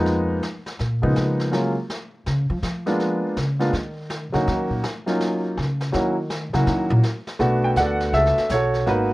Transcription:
0.00 0.39 F2 medium
0.00 0.40 F3 medium
0.00 0.40 G#3 medium
0.00 0.41 A#3 medium
0.00 0.41 B3 medium
0.00 0.41 D#4 medium
0.06 brush sweep soft
0.06 snare soft
0.43 snare medium
0.66 snare soft
0.79 1.03 A#2 medium
0.79 brush sweep soft
0.79 snare soft
1.02 1.16 C#3 loud
1.02 1.50 F3 medium
1.02 1.50 G#3 medium
1.02 1.50 A#3 medium
1.02 1.50 B3 medium
1.02 1.50 D#4 medium
1.16 snare medium
1.40 snare soft
1.51 1.74 F#3 medium
1.51 1.74 G#3 medium
1.51 1.74 A#3 medium
1.51 1.74 C#4 medium
1.51 1.74 F4 medium
1.51 brush sweep soft
1.51 snare medium
1.90 snare medium
2.26 2.49 C#3 medium
2.26 brush sweep medium
2.26 snare medium
2.50 2.62 F3 loud
2.63 3.19 F3 medium
2.63 snare medium
2.86 3.34 G#3 medium
2.86 3.34 A#3 medium
2.86 3.34 B3 medium
2.86 3.34 D4 medium
2.86 3.34 F4 medium
2.86 snare soft
2.99 brush sweep medium
2.99 snare medium
3.37 3.71 C#3 medium
3.37 snare medium
3.60 3.72 G#3 medium
3.60 3.72 A#3 medium
3.60 3.72 B3 medium
3.60 3.72 D4 medium
3.60 3.72 F4 medium
3.60 snare soft
3.73 4.30 D#3 medium
3.73 brush sweep soft
3.73 snare medium
4.10 snare medium
4.32 4.46 D3 loud
4.32 4.80 F#3 medium
4.32 4.80 A#3 medium
4.32 4.81 C#4 medium
4.32 4.81 D#4 medium
4.32 4.81 F#4 medium
4.32 snare soft
4.47 4.69 D#3 loud
4.47 brush sweep medium
4.47 snare medium
4.70 4.83 A#2 medium
4.84 snare medium
5.06 5.54 F#3 medium
5.06 5.54 A#3 medium
5.06 5.54 C#4 medium
5.06 5.54 D#4 medium
5.06 5.55 F4 medium
5.06 snare soft
5.20 brush sweep soft
5.20 snare medium
5.57 5.91 C#3 medium
5.57 snare medium
5.80 snare medium
5.92 6.50 D#3 loud
5.92 6.14 F#3 medium
5.92 6.14 A#3 medium
5.92 6.14 C#4 medium
5.92 6.15 E4 medium
5.92 6.15 F#4 medium
5.92 brush sweep soft
5.92 snare soft
6.30 snare medium
6.53 6.66 C#3 medium
6.53 7.01 F#3 medium
6.53 7.01 A#3 medium
6.53 7.01 C#4 medium
6.53 7.01 E4 medium
6.53 7.01 F#4 medium
6.53 snare soft
6.66 6.90 D#3 loud
6.66 brush sweep medium
6.66 snare medium
6.90 6.98 A#2 loud
7.03 snare medium
7.27 snare soft
7.39 7.76 B1 medium
7.39 8.42 A3 medium
7.39 8.43 B3 medium
7.39 8.43 D4 medium
7.39 8.43 F#4 medium
7.39 brush sweep soft
7.39 kick soft
7.39 snare soft
7.64 7.69 G5 medium
7.76 8.12 D2 medium
7.76 8.15 A4 medium
7.76 8.48 D5 medium
7.76 8.15 F#5 loud
7.76 kick soft
7.76 snare medium
7.76 hi-hat pedal medium
8.01 snare medium
8.13 8.36 C#2 medium
8.13 8.52 A4 medium
8.13 8.52 E5 loud
8.13 brush sweep medium
8.13 kick soft
8.13 snare soft
8.26 snare soft
8.38 snare medium
8.49 8.86 B1 medium
8.49 8.89 C#5 medium
8.49 kick soft
8.49 snare medium
8.49 hi-hat pedal medium
8.54 8.86 F#4 medium
8.54 8.86 A4 medium
8.74 snare soft
8.86 9.13 G#1 medium
8.86 9.08 A#3 medium
8.86 9.08 B3 medium
8.86 9.09 D#4 medium
8.86 8.89 F#4 medium
8.86 9.13 B4 medium
8.86 brush sweep soft
8.86 kick soft
8.86 snare soft
8.90 9.13 F#4 medium

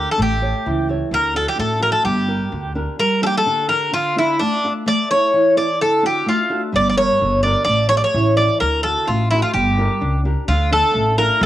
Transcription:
0.00 0.17 D3 medium
0.00 0.13 D4 soft
0.00 0.14 G4 soft
0.00 0.14 A#4 medium
0.11 0.20 A4 medium
0.18 0.52 A1 medium
0.18 0.64 A3 medium
0.22 0.87 G4 medium
0.41 0.79 G4 soft
0.41 0.79 A4 soft
0.41 0.80 C#5 soft
0.66 0.99 C#2 medium
0.66 1.11 E3 medium
0.89 1.08 G4 soft
0.89 1.08 A4 soft
0.89 1.09 C#5 medium
1.11 1.45 D2 medium
1.11 1.57 D3 medium
1.11 1.36 A#4 loud
1.34 1.72 D4 soft
1.34 1.72 F#4 soft
1.34 1.73 A4 soft
1.34 1.48 A4 medium
1.48 1.59 G4 medium
1.58 1.92 A1 medium
1.58 2.03 A3 medium
1.58 1.82 A4 medium
1.80 2.00 D4 soft
1.80 2.00 F#4 soft
1.80 2.01 A4 medium
1.80 1.91 A#4 medium
1.92 2.04 A4 medium
2.04 2.38 G1 medium
2.04 2.50 G3 medium
2.04 2.72 G4 medium
2.28 2.66 D4 soft
2.28 2.66 G4 soft
2.28 2.66 A#4 soft
2.52 2.85 D2 medium
2.52 2.98 D3 medium
2.75 2.94 D4 soft
2.75 2.94 G4 soft
2.75 2.95 A#4 soft
2.99 3.45 G3 medium
2.99 3.23 A#4 medium
3.22 3.61 A#3 soft
3.22 3.60 D4 soft
3.22 3.60 G4 soft
3.22 3.26 A4 medium
3.27 3.35 G4 medium
3.38 3.68 A4 medium
3.46 3.91 D3 medium
3.68 3.87 D4 soft
3.68 3.88 G4 soft
3.68 3.91 A#4 medium
3.68 3.88 A#4 medium
3.92 4.38 D3 medium
3.92 4.15 F4 medium
4.16 4.54 D4 soft
4.16 4.39 E4 medium
4.16 4.54 F4 soft
4.16 4.54 A4 soft
4.39 4.85 A3 medium
4.39 4.72 D4 medium
4.64 4.83 D4 soft
4.64 4.82 F4 soft
4.64 4.83 A4 medium
4.86 5.32 A3 medium
4.86 5.10 D5 medium
5.11 5.48 E4 soft
5.11 5.49 A4 soft
5.11 5.57 C#5 loud
5.11 5.49 C#5 medium
5.33 5.79 E3 medium
5.56 5.75 E4 medium
5.56 5.75 A4 soft
5.56 5.76 C#5 medium
5.56 5.79 D5 medium
5.81 6.26 D3 medium
5.81 6.03 A4 medium
6.03 6.40 D4 soft
6.03 6.41 F#4 soft
6.03 6.26 G4 medium
6.03 6.41 A4 soft
6.26 6.72 A3 medium
6.26 6.60 F4 medium
6.49 6.69 D4 soft
6.49 6.69 F#4 soft
6.49 6.69 A4 medium
6.72 7.07 G1 medium
6.72 7.18 G3 medium
6.72 6.88 D5 medium
6.90 6.97 D5 medium
6.96 7.34 D4 soft
6.96 7.34 G4 soft
6.96 7.34 A#4 soft
6.96 7.41 C#5 loud
7.21 7.54 G1 medium
7.21 7.66 D3 medium
7.43 7.62 D4 soft
7.43 7.63 G4 soft
7.43 7.63 A#4 medium
7.43 7.63 D5 medium
7.65 8.00 A1 medium
7.65 8.13 A3 medium
7.65 7.88 D5 medium
7.89 8.28 G4 soft
7.89 8.28 A4 soft
7.89 7.96 C#5 loud
7.89 8.28 C#5 soft
7.97 8.04 D5 medium
8.04 8.35 C#5 medium
8.14 8.47 A1 loud
8.14 8.59 E3 medium
8.37 8.57 G4 soft
8.37 8.57 A4 soft
8.37 8.57 C#5 medium
8.37 8.60 D5 medium
8.60 8.94 D2 medium
8.60 9.06 D3 medium
8.60 8.83 A#4 medium
8.83 9.22 D4 soft
8.83 9.22 F#4 soft
8.83 9.08 A4 medium
8.83 9.22 A4 soft
9.07 9.40 A1 medium
9.07 9.53 A3 medium
9.07 9.29 F4 medium
9.30 9.50 D4 soft
9.30 9.42 E4 medium
9.30 9.51 F#4 soft
9.30 9.51 A4 medium
9.42 9.53 F4 medium
9.53 9.87 G1 loud
9.53 10.00 G3 medium
9.53 10.20 G4 medium
9.78 10.00 D4 soft
9.78 10.15 G4 soft
9.78 10.15 A#4 medium
10.01 10.34 C#2 medium
10.01 10.24 D4 medium
10.25 10.43 D4 soft
10.25 10.44 G4 soft
10.25 10.43 A#4 medium
10.48 10.80 D2 loud
10.48 10.93 D3 medium
10.48 10.69 F4 medium
10.71 11.08 D4 medium
10.71 11.09 F4 soft
10.71 11.09 A4 medium
10.71 11.15 A4 medium
10.94 11.27 A1 medium
10.94 11.39 A3 medium
11.17 11.36 D4 soft
11.17 11.36 F4 soft
11.17 11.36 A4 medium
11.17 11.42 A#4 medium
11.41 11.46 G1 loud
11.41 11.46 G3 medium

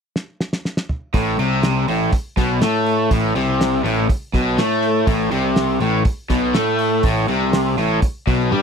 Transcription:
0.16 snare medium
0.41 snare medium
0.53 snare medium
0.65 snare medium
0.77 snare medium
0.89 mid tom medium
1.14 1.37 A1 medium
1.14 1.38 A2 medium
1.14 kick loud
1.14 open hi-hat medium
1.38 1.84 C2 medium
1.38 1.87 C3 medium
1.38 open hi-hat soft
1.63 snare loud
1.63 open hi-hat medium
1.88 2.11 A1 medium
1.88 2.12 A2 medium
1.88 open hi-hat medium
2.13 muted picked electric bass stroke soft
2.13 muted overdriven electric guitar stroke soft
2.13 kick loud
2.13 open hi-hat medium
2.37 2.60 B1 medium
2.37 2.61 B2 medium
2.37 kick medium
2.37 snare soft
2.37 open hi-hat soft
2.61 3.08 A2 medium
2.61 3.10 A3 medium
2.61 snare loud
2.61 open hi-hat medium
2.86 open hi-hat soft
3.11 3.34 A1 medium
3.11 3.35 A2 medium
3.11 kick loud
3.11 open hi-hat medium
3.35 3.81 C2 medium
3.35 3.84 C3 medium
3.35 open hi-hat soft
3.61 snare medium
3.61 open hi-hat medium
3.84 4.07 A1 medium
3.84 4.08 A2 medium
3.84 open hi-hat soft
4.09 muted picked electric bass stroke soft
4.09 muted overdriven electric guitar stroke soft
4.09 kick loud
4.09 open hi-hat medium
4.33 4.56 B1 medium
4.33 4.58 B2 medium
4.33 kick medium
4.33 snare soft
4.33 open hi-hat soft
4.58 5.04 A2 medium
4.58 5.07 A3 loud
4.58 snare medium
4.58 open hi-hat medium
4.83 open hi-hat soft
5.07 5.30 A1 medium
5.07 5.31 A2 medium
5.07 kick loud
5.07 open hi-hat medium
5.31 5.78 C2 medium
5.31 5.80 C3 medium
5.31 open hi-hat soft
5.56 snare medium
5.56 open hi-hat medium
5.80 6.04 A1 medium
5.80 6.04 A2 medium
5.80 open hi-hat soft
6.05 muted overdriven electric guitar stroke soft
6.05 muted picked electric bass stroke soft
6.05 kick loud
6.05 open hi-hat medium
6.30 6.53 B1 medium
6.30 6.54 B2 medium
6.30 kick medium
6.30 snare soft
6.30 open hi-hat medium
6.54 7.01 A2 medium
6.54 7.03 A3 loud
6.54 snare loud
6.54 open hi-hat medium
6.79 open hi-hat soft
7.03 7.27 A1 medium
7.03 7.28 A2 loud
7.03 kick loud
7.03 open hi-hat medium
7.28 7.74 C2 medium
7.28 7.77 C3 medium
7.28 open hi-hat soft
7.53 snare loud
7.53 open hi-hat medium
7.78 8.01 A1 medium
7.78 8.01 A2 medium
7.78 open hi-hat soft
8.02 muted overdriven electric guitar stroke soft
8.02 muted picked electric bass stroke soft
8.02 kick loud
8.02 open hi-hat medium
8.27 8.50 B1 medium
8.27 8.51 B2 medium
8.27 kick medium
8.27 open hi-hat soft
8.51 8.62 G2 medium
8.51 8.62 G3 medium
8.51 high tom medium

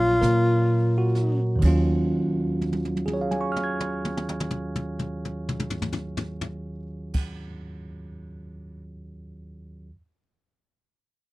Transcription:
0.00 0.18 A#1 medium
0.00 1.61 F#3 medium
0.00 1.62 A#3 soft
0.00 1.62 C#4 medium
0.00 1.40 F4 medium
0.00 1.63 F4 medium
0.00 0.56 C#5 soft
0.21 1.58 A#2 medium
0.21 1.35 A#4 soft
0.21 brush sweep soft
0.21 snare soft
0.21 hi-hat pedal medium
0.98 1.98 F#4 soft
1.15 snare soft
1.56 7.30 D#2 medium
1.56 7.32 D#3 soft
1.62 7.29 D#2 medium
1.62 7.33 F#3 soft
1.62 7.35 C#4 medium
1.62 kick loud
1.62 crash medium
1.67 7.36 F4 medium
2.61 high tom soft
2.72 high tom soft
2.85 high tom soft
2.97 high tom soft
3.06 7.29 G#4 soft
3.06 high tom soft
3.14 7.33 C#5 soft
3.21 7.37 F5 soft
3.31 7.42 G#5 soft
3.31 high tom soft
3.41 7.46 C#6 soft
3.52 7.52 F6 soft
3.56 mid tom soft
3.64 7.58 G#6 soft
3.80 mid tom soft
4.05 mid tom soft
4.17 mid tom soft
4.29 mid tom medium
4.40 mid tom medium
4.51 mid tom medium
4.76 mid tom medium
4.99 mid tom medium
5.25 mid tom medium
5.49 mid tom medium
5.60 mid tom medium
5.70 floor tom medium
5.82 floor tom medium
5.93 floor tom medium
6.17 floor tom medium
6.41 floor tom medium
7.14 kick medium
7.14 crash medium

